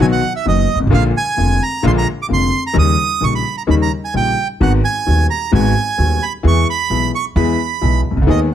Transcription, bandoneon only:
0, 0, Header, 1, 2, 480
1, 0, Start_track
1, 0, Tempo, 459770
1, 956, Time_signature, 4, 2, 24, 8
1, 8917, End_track
2, 0, Start_track
2, 0, Title_t, "Bandoneon"
2, 0, Program_c, 0, 23
2, 14, Note_on_c, 0, 80, 70
2, 64, Note_off_c, 0, 80, 0
2, 127, Note_on_c, 0, 78, 73
2, 346, Note_off_c, 0, 78, 0
2, 376, Note_on_c, 0, 76, 68
2, 479, Note_off_c, 0, 76, 0
2, 503, Note_on_c, 0, 75, 79
2, 825, Note_off_c, 0, 75, 0
2, 980, Note_on_c, 0, 77, 89
2, 1082, Note_off_c, 0, 77, 0
2, 1222, Note_on_c, 0, 80, 87
2, 1701, Note_on_c, 0, 82, 81
2, 1702, Note_off_c, 0, 80, 0
2, 1935, Note_off_c, 0, 82, 0
2, 1954, Note_on_c, 0, 84, 77
2, 1999, Note_off_c, 0, 84, 0
2, 2067, Note_on_c, 0, 82, 86
2, 2168, Note_off_c, 0, 82, 0
2, 2321, Note_on_c, 0, 86, 73
2, 2364, Note_off_c, 0, 86, 0
2, 2436, Note_on_c, 0, 84, 89
2, 2752, Note_off_c, 0, 84, 0
2, 2785, Note_on_c, 0, 82, 76
2, 2883, Note_off_c, 0, 82, 0
2, 2911, Note_on_c, 0, 87, 97
2, 3382, Note_on_c, 0, 85, 89
2, 3389, Note_off_c, 0, 87, 0
2, 3482, Note_off_c, 0, 85, 0
2, 3501, Note_on_c, 0, 83, 69
2, 3714, Note_off_c, 0, 83, 0
2, 3734, Note_on_c, 0, 82, 64
2, 3785, Note_off_c, 0, 82, 0
2, 3866, Note_on_c, 0, 83, 72
2, 3914, Note_off_c, 0, 83, 0
2, 3989, Note_on_c, 0, 82, 74
2, 4091, Note_off_c, 0, 82, 0
2, 4224, Note_on_c, 0, 80, 60
2, 4326, Note_off_c, 0, 80, 0
2, 4350, Note_on_c, 0, 79, 72
2, 4674, Note_off_c, 0, 79, 0
2, 4829, Note_on_c, 0, 78, 81
2, 4931, Note_off_c, 0, 78, 0
2, 5058, Note_on_c, 0, 80, 80
2, 5499, Note_off_c, 0, 80, 0
2, 5537, Note_on_c, 0, 82, 76
2, 5755, Note_off_c, 0, 82, 0
2, 5791, Note_on_c, 0, 80, 72
2, 6502, Note_on_c, 0, 83, 73
2, 6520, Note_off_c, 0, 80, 0
2, 6607, Note_off_c, 0, 83, 0
2, 6761, Note_on_c, 0, 85, 85
2, 6968, Note_off_c, 0, 85, 0
2, 6995, Note_on_c, 0, 83, 92
2, 7427, Note_off_c, 0, 83, 0
2, 7467, Note_on_c, 0, 85, 88
2, 7570, Note_off_c, 0, 85, 0
2, 7687, Note_on_c, 0, 83, 70
2, 8362, Note_off_c, 0, 83, 0
2, 8666, Note_on_c, 0, 75, 77
2, 8768, Note_off_c, 0, 75, 0
2, 8917, End_track
0, 0, End_of_file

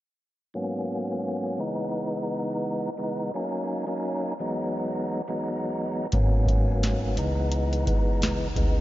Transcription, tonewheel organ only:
0, 0, Header, 1, 2, 480
1, 0, Start_track
1, 0, Key_signature, 5, "minor"
1, 0, Tempo, 697674
1, 375, Time_signature, 4, 2, 24, 8
1, 6059, End_track
2, 0, Start_track
2, 0, Title_t, "Tonewheel organ"
2, 0, Program_c, 0, 16
2, 370, Note_on_c, 0, 44, 86
2, 374, Note_on_c, 0, 54, 88
2, 377, Note_on_c, 0, 58, 82
2, 380, Note_on_c, 0, 59, 80
2, 384, Note_on_c, 0, 61, 98
2, 1090, Note_on_c, 0, 37, 87
2, 1093, Note_off_c, 0, 44, 0
2, 1093, Note_off_c, 0, 59, 0
2, 1094, Note_off_c, 0, 54, 0
2, 1094, Note_on_c, 0, 52, 78
2, 1096, Note_off_c, 0, 58, 0
2, 1097, Note_on_c, 0, 56, 85
2, 1099, Note_off_c, 0, 61, 0
2, 1101, Note_on_c, 0, 59, 80
2, 1105, Note_on_c, 0, 63, 94
2, 1991, Note_off_c, 0, 37, 0
2, 1993, Note_off_c, 0, 52, 0
2, 1995, Note_off_c, 0, 56, 0
2, 1997, Note_off_c, 0, 59, 0
2, 1998, Note_off_c, 0, 63, 0
2, 2047, Note_on_c, 0, 37, 69
2, 2051, Note_on_c, 0, 52, 70
2, 2055, Note_on_c, 0, 56, 70
2, 2058, Note_on_c, 0, 59, 67
2, 2061, Note_on_c, 0, 63, 83
2, 2276, Note_off_c, 0, 37, 0
2, 2277, Note_off_c, 0, 52, 0
2, 2279, Note_off_c, 0, 56, 0
2, 2281, Note_off_c, 0, 59, 0
2, 2283, Note_off_c, 0, 63, 0
2, 2299, Note_on_c, 0, 54, 95
2, 2303, Note_on_c, 0, 58, 81
2, 2307, Note_on_c, 0, 61, 87
2, 2313, Note_on_c, 0, 63, 97
2, 2646, Note_off_c, 0, 54, 0
2, 2648, Note_off_c, 0, 58, 0
2, 2651, Note_off_c, 0, 61, 0
2, 2653, Note_off_c, 0, 63, 0
2, 2660, Note_on_c, 0, 54, 90
2, 2664, Note_on_c, 0, 58, 79
2, 2669, Note_on_c, 0, 61, 83
2, 2673, Note_on_c, 0, 63, 104
2, 2982, Note_off_c, 0, 54, 0
2, 2984, Note_off_c, 0, 58, 0
2, 2987, Note_off_c, 0, 61, 0
2, 2989, Note_off_c, 0, 63, 0
2, 3023, Note_on_c, 0, 40, 94
2, 3027, Note_on_c, 0, 54, 89
2, 3031, Note_on_c, 0, 56, 87
2, 3034, Note_on_c, 0, 59, 80
2, 3037, Note_on_c, 0, 63, 96
2, 3585, Note_off_c, 0, 40, 0
2, 3587, Note_off_c, 0, 54, 0
2, 3589, Note_off_c, 0, 56, 0
2, 3591, Note_off_c, 0, 59, 0
2, 3592, Note_off_c, 0, 63, 0
2, 3631, Note_on_c, 0, 40, 84
2, 3634, Note_on_c, 0, 54, 76
2, 3637, Note_on_c, 0, 56, 80
2, 3640, Note_on_c, 0, 59, 81
2, 3643, Note_on_c, 0, 63, 96
2, 4172, Note_off_c, 0, 40, 0
2, 4174, Note_off_c, 0, 54, 0
2, 4176, Note_off_c, 0, 56, 0
2, 4177, Note_off_c, 0, 59, 0
2, 4179, Note_off_c, 0, 63, 0
2, 4210, Note_on_c, 0, 44, 88
2, 4214, Note_on_c, 0, 54, 86
2, 4217, Note_on_c, 0, 58, 85
2, 4220, Note_on_c, 0, 59, 84
2, 4224, Note_on_c, 0, 61, 98
2, 4930, Note_on_c, 0, 37, 88
2, 4932, Note_off_c, 0, 44, 0
2, 4932, Note_off_c, 0, 59, 0
2, 4933, Note_on_c, 0, 52, 80
2, 4934, Note_off_c, 0, 54, 0
2, 4936, Note_off_c, 0, 58, 0
2, 4937, Note_on_c, 0, 56, 82
2, 4939, Note_off_c, 0, 61, 0
2, 4940, Note_on_c, 0, 59, 83
2, 4944, Note_on_c, 0, 63, 99
2, 5831, Note_off_c, 0, 37, 0
2, 5833, Note_off_c, 0, 52, 0
2, 5834, Note_off_c, 0, 56, 0
2, 5836, Note_off_c, 0, 59, 0
2, 5838, Note_off_c, 0, 63, 0
2, 5888, Note_on_c, 0, 49, 69
2, 5891, Note_on_c, 0, 52, 72
2, 5894, Note_on_c, 0, 56, 71
2, 5898, Note_on_c, 0, 59, 69
2, 5901, Note_on_c, 0, 63, 82
2, 6059, Note_off_c, 0, 49, 0
2, 6059, Note_off_c, 0, 52, 0
2, 6059, Note_off_c, 0, 56, 0
2, 6059, Note_off_c, 0, 59, 0
2, 6059, Note_off_c, 0, 63, 0
2, 6059, End_track
0, 0, End_of_file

